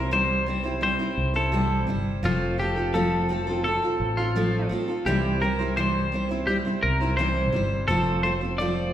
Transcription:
0.00 0.96 C2 medium
0.00 0.11 G3 soft
0.00 0.11 C4 soft
0.00 0.12 E4 soft
0.00 0.12 A#4 medium
0.00 0.11 C5 soft
0.11 0.47 C3 medium
0.11 0.47 E3 medium
0.11 0.45 G3 medium
0.11 0.47 C4 medium
0.11 0.48 E4 medium
0.11 0.48 C5 medium
0.46 0.64 G3 medium
0.46 0.65 C4 medium
0.46 0.64 E4 medium
0.46 0.62 C5 medium
0.64 0.80 G3 soft
0.64 0.81 C4 soft
0.64 0.82 E4 soft
0.64 0.82 C5 medium
0.81 0.99 G3 soft
0.81 1.00 C4 medium
0.81 0.99 E4 medium
0.81 0.98 C5 medium
0.99 1.36 G3 soft
0.99 1.35 C4 soft
0.99 1.34 E4 soft
0.99 1.33 C5 soft
1.18 1.89 C2 medium
1.34 1.52 G3 soft
1.34 1.52 C4 soft
1.34 1.53 E4 soft
1.34 1.85 A4 medium
1.34 1.52 C5 soft
1.52 1.88 C3 medium
1.52 1.88 E3 medium
1.52 1.86 G3 medium
1.52 1.87 C4 medium
1.52 1.88 E4 medium
1.52 1.89 C5 medium
1.87 2.21 G1 medium
1.87 2.23 G3 medium
1.87 2.23 C4 soft
1.87 2.24 E4 medium
1.87 2.24 C5 medium
2.23 3.78 F1 medium
2.23 2.58 F3 medium
2.23 2.57 A3 medium
2.23 2.58 C4 medium
2.23 2.59 F4 medium
2.23 2.60 A4 medium
2.58 2.76 A3 soft
2.58 2.77 C4 medium
2.58 2.76 F4 medium
2.58 2.95 G4 medium
2.58 2.75 A4 medium
2.76 2.94 C4 soft
2.76 2.94 F4 soft
2.76 2.94 A4 soft
2.93 3.29 F3 medium
2.93 3.28 A3 medium
2.93 3.29 C4 medium
2.93 3.30 F4 medium
2.93 3.30 A4 medium
3.29 3.47 A3 medium
3.29 3.47 C4 medium
3.29 3.48 F4 medium
3.29 3.46 A4 medium
3.47 3.64 C4 soft
3.47 3.66 F4 soft
3.47 3.65 A4 soft
3.64 3.82 A3 soft
3.64 3.83 C4 medium
3.64 3.83 F4 soft
3.64 3.81 A4 medium
3.82 4.19 C4 soft
3.82 4.19 F4 soft
3.82 4.17 A4 soft
4.00 4.67 A1 medium
4.18 4.36 C4 soft
4.18 4.36 F4 soft
4.18 4.35 A4 medium
4.36 4.71 F3 medium
4.36 4.68 A3 medium
4.36 4.70 C4 medium
4.36 4.71 F4 medium
4.36 4.72 A4 medium
4.69 4.88 A3 medium
4.69 4.88 C4 medium
4.69 4.88 F4 medium
4.69 4.87 A4 medium
4.88 5.06 C4 soft
4.88 5.07 F4 soft
4.88 5.06 A4 soft
5.06 6.61 C2 medium
5.06 5.41 C3 medium
5.06 5.42 E3 medium
5.06 5.40 G3 medium
5.06 5.41 C4 medium
5.06 5.42 E4 medium
5.06 5.42 G4 medium
5.06 5.42 C5 medium
5.41 5.59 G3 soft
5.41 5.59 C4 soft
5.41 5.59 E4 medium
5.41 5.77 A#4 medium
5.41 5.58 C5 medium
5.59 5.76 G3 soft
5.59 5.77 C4 soft
5.59 5.77 E4 soft
5.59 5.77 C5 soft
5.77 6.12 C3 medium
5.77 6.12 E3 medium
5.77 6.11 G3 medium
5.77 6.12 C4 medium
5.77 6.13 E4 medium
5.77 6.13 C5 medium
6.12 6.30 G3 medium
6.12 6.30 C4 medium
6.12 6.30 E4 medium
6.12 6.28 C5 medium
6.29 6.46 G3 soft
6.29 6.47 C4 soft
6.29 6.48 E4 soft
6.29 6.47 C5 soft
6.47 6.65 G3 medium
6.47 6.66 C4 medium
6.47 6.65 E4 medium
6.47 6.56 G4 medium
6.47 6.64 C5 medium
6.65 7.02 G3 soft
6.65 7.01 C4 soft
6.65 7.00 E4 soft
6.65 6.99 C5 soft
6.83 7.53 C2 medium
6.83 7.17 A#4 medium
7.01 7.18 G3 soft
7.01 7.18 C4 soft
7.01 7.19 E4 soft
7.01 7.18 C5 soft
7.18 7.53 C3 medium
7.18 7.54 E3 medium
7.18 7.51 G3 medium
7.18 7.53 C4 medium
7.18 7.54 E4 medium
7.18 7.55 C5 medium
7.52 7.86 G1 medium
7.52 7.88 G3 medium
7.52 7.88 C4 medium
7.52 7.89 E4 medium
7.52 7.90 C5 medium
7.88 8.93 F1 medium
7.88 8.24 F3 medium
7.88 8.22 A3 medium
7.88 8.24 C4 medium
7.88 8.25 F4 medium
7.88 8.23 A4 medium
7.88 8.25 C5 medium
8.23 8.41 A3 soft
8.23 8.42 C4 medium
8.23 8.42 F4 soft
8.23 8.40 C5 medium
8.41 8.60 C4 soft
8.41 8.60 F4 soft
8.41 8.59 C5 soft
8.58 8.93 F3 medium
8.58 8.93 A3 medium
8.58 8.93 C4 medium
8.58 8.93 F4 medium
8.58 8.93 C5 medium
8.58 8.93 D5 medium

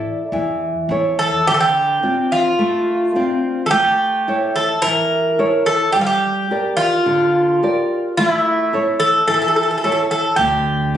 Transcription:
0.00 0.23 E4 soft
0.00 0.23 A4 soft
0.00 0.86 D5 medium
0.00 0.23 E5 medium
0.32 0.72 E2 medium
0.32 0.88 E3 medium
0.89 1.29 E2 medium
0.89 1.36 E4 soft
0.89 1.36 A4 soft
0.89 1.36 C#5 medium
1.19 1.45 A4 medium
1.47 2.02 D3 medium
1.47 1.54 G4 loud
1.54 1.60 A4 medium
1.61 2.34 G4 loud
2.03 2.48 C4 medium
2.03 2.48 D4 soft
2.03 2.49 F4 medium
2.32 3.62 F4 loud
2.59 3.14 A3 medium
3.16 3.61 C4 medium
3.16 3.61 D4 soft
3.16 3.61 F4 medium
3.66 3.70 A4 medium
3.71 4.27 A3 medium
3.71 4.52 G4 loud
4.28 4.73 E4 medium
4.28 4.73 A4 medium
4.28 4.73 C#5 medium
4.56 4.82 A4 loud
4.82 5.38 E3 medium
4.82 5.66 A#4 loud
5.39 5.84 E4 medium
5.39 5.84 A4 soft
5.39 5.85 C#5 medium
5.66 5.92 A4 loud
5.92 6.50 G3 medium
5.92 6.00 G4 loud
6.01 6.06 F4 medium
6.07 6.74 G4 loud
6.51 6.96 G4 medium
6.51 6.96 A#4 soft
6.51 6.96 D5 medium
6.77 8.17 F4 loud
7.06 7.61 D3 medium
7.63 8.07 G4 medium
7.63 8.07 A#4 soft
7.63 8.08 D5 medium
8.17 8.72 A3 medium
8.17 8.97 E4 medium
8.73 9.18 E4 medium
8.73 9.18 A4 soft
8.73 9.18 C#5 medium
9.00 9.26 A4 loud
9.28 9.82 E3 medium
9.28 9.33 A4 loud
9.34 9.40 A4 medium
9.42 9.47 A4 medium
9.48 9.55 A4 medium
9.56 9.62 A4 medium
9.63 9.69 A4 medium
9.71 9.76 A4 medium
9.78 9.83 A4 medium
9.84 10.28 E4 medium
9.84 9.91 A4 medium
9.84 10.28 A4 soft
9.84 10.29 C#5 medium
9.92 9.99 A4 medium
10.11 10.36 A4 medium
10.36 10.97 D2 loud
10.36 10.93 D3 medium
10.36 10.97 G4 medium

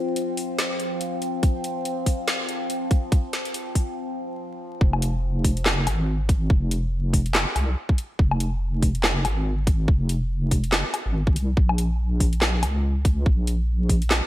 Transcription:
0.00 4.86 F3 medium
0.00 4.86 C4 medium
0.16 closed hi-hat medium
0.37 open hi-hat medium
0.58 snare loud
0.58 closed hi-hat medium
0.80 closed hi-hat medium
1.01 closed hi-hat medium
1.22 closed hi-hat medium
1.43 kick loud
1.43 closed hi-hat medium
1.64 closed hi-hat medium
1.85 closed hi-hat medium
2.06 kick medium
2.06 open hi-hat medium
2.28 snare loud
2.28 closed hi-hat medium
2.49 closed hi-hat medium
2.70 closed hi-hat medium
2.91 kick loud
2.91 closed hi-hat soft
3.12 kick loud
3.12 closed hi-hat medium
3.33 snare medium
3.33 closed hi-hat medium
3.45 closed hi-hat soft
3.54 closed hi-hat medium
3.75 kick medium
3.75 open hi-hat medium
4.81 5.88 F1 loud
4.81 kick loud
4.93 low woodblock medium
5.02 closed hi-hat medium
5.44 kick medium
5.44 open hi-hat medium
5.57 closed hi-hat soft
5.66 snare loud
5.66 clap medium
5.87 6.49 G#1 loud
5.87 closed hi-hat medium
5.87 low woodblock soft
6.29 kick loud
6.29 closed hi-hat medium
6.50 7.45 F1 loud
6.50 kick loud
6.71 closed hi-hat medium
7.13 kick medium
7.13 open hi-hat medium
7.26 closed hi-hat soft
7.35 snare loud
7.35 clap medium
7.56 7.75 C2 loud
7.56 closed hi-hat medium
7.56 low woodblock medium
7.89 kick loud
7.98 closed hi-hat medium
8.19 9.26 F1 loud
8.19 kick loud
8.31 low woodblock medium
8.40 closed hi-hat medium
8.82 kick medium
8.82 open hi-hat medium
8.95 closed hi-hat soft
9.04 snare loud
9.04 clap medium
9.25 9.87 G#1 medium
9.25 closed hi-hat medium
9.25 low woodblock medium
9.67 kick loud
9.67 closed hi-hat medium
9.88 10.83 F1 loud
9.88 kick loud
10.09 closed hi-hat medium
10.51 kick medium
10.51 open hi-hat medium
10.64 closed hi-hat soft
10.72 snare loud
10.72 clap medium
10.94 closed hi-hat medium
10.94 low woodblock medium
11.06 11.37 G#1 medium
11.27 kick loud
11.36 11.56 C2 medium
11.36 closed hi-hat medium
11.57 12.64 A#1 loud
11.57 kick loud
11.69 low woodblock medium
11.78 closed hi-hat medium
12.20 kick medium
12.20 open hi-hat medium
12.33 closed hi-hat soft
12.42 snare loud
12.42 clap medium
12.63 13.25 C#2 medium
12.63 closed hi-hat medium
12.63 low woodblock medium
13.05 kick loud
13.05 closed hi-hat medium
13.26 14.21 A#1 loud
13.26 kick loud
13.47 closed hi-hat medium
13.89 kick medium
13.89 open hi-hat loud
14.02 closed hi-hat soft
14.11 snare loud
14.11 clap medium

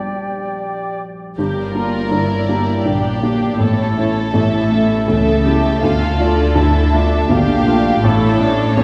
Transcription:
0.00 1.41 A#1 soft
0.00 1.35 G3 soft
0.00 1.35 D4 soft
0.00 1.02 G4 soft
0.00 1.35 G4 soft
0.00 1.02 D5 soft
0.00 1.02 G5 soft
1.37 2.82 G1 soft
1.37 1.74 G1 soft
1.37 1.74 G2 soft
1.37 2.83 G2 soft
1.37 1.72 G4 soft
1.37 2.82 A#4 soft
1.37 3.57 D5 soft
1.74 2.08 A#3 soft
1.74 2.08 D4 soft
1.74 2.11 F4 soft
1.74 2.09 G4 soft
2.10 2.48 G1 soft
2.10 2.48 G2 soft
2.10 2.85 E4 soft
2.49 2.82 A#3 soft
2.49 2.82 D4 soft
2.49 2.83 G4 soft
2.85 3.22 G1 soft
2.85 3.61 A#1 soft
2.85 3.22 G2 soft
2.85 3.60 A#2 soft
2.85 3.21 D4 soft
2.85 3.61 G4 soft
3.22 3.56 A#3 soft
3.22 3.59 D4 soft
3.22 3.57 D4 soft
3.22 3.57 G4 soft
3.60 3.96 A1 soft
3.60 5.06 A1 soft
3.60 3.97 A2 soft
3.60 5.06 A2 soft
3.60 4.34 E4 soft
3.60 5.07 A4 soft
3.60 3.96 C#5 soft
3.97 4.31 A3 soft
3.97 4.31 C#4 soft
3.97 4.31 E4 soft
3.97 4.34 C#5 soft
4.33 4.70 A1 soft
4.33 4.70 A2 soft
4.33 5.07 E4 soft
4.33 5.08 E5 soft
4.71 5.05 A3 soft
4.71 5.05 C#4 soft
4.71 5.05 E4 soft
5.08 5.44 A1 soft
5.08 5.82 C#2 soft
5.08 5.44 A2 soft
5.08 5.83 C#3 soft
5.08 7.25 A4 medium
5.08 5.46 A4 soft
5.08 5.82 E5 soft
5.45 5.79 A3 soft
5.45 5.80 C#4 soft
5.45 5.80 E4 soft
5.45 5.82 G4 medium
5.82 7.29 D2 medium
5.82 6.18 D2 soft
5.82 6.18 D3 soft
5.82 7.30 D3 medium
5.82 6.55 F4 medium
5.82 6.19 F5 medium
6.19 6.52 A3 soft
6.19 6.53 D4 soft
6.19 6.53 F4 soft
6.19 6.56 D5 medium
6.55 6.91 D2 soft
6.55 6.91 D3 soft
6.55 6.93 E4 medium
6.55 7.30 E5 soft
6.93 7.26 A3 soft
6.93 7.29 D4 medium
6.93 7.26 D4 soft
6.93 7.27 F4 soft
7.29 8.02 A#1 medium
7.29 7.65 D2 soft
7.29 8.02 A#2 medium
7.29 7.65 D3 soft
7.29 8.02 D4 medium
7.29 8.03 G4 medium
7.29 8.04 F5 medium
7.67 8.00 A3 soft
7.67 8.00 D4 soft
7.67 8.00 F4 soft
8.03 8.84 A1 medium
8.03 8.40 A1 medium
8.03 8.39 A2 medium
8.03 8.84 A2 medium
8.03 8.40 E4 medium
8.03 8.77 A4 medium
8.03 8.84 C#5 medium
8.40 8.74 A3 soft
8.40 8.74 C#4 soft
8.40 8.78 D4 medium
8.40 8.74 E4 medium
8.77 8.84 A1 medium
8.77 8.84 A2 medium
8.77 8.84 C#4 medium
8.77 8.84 C#5 medium

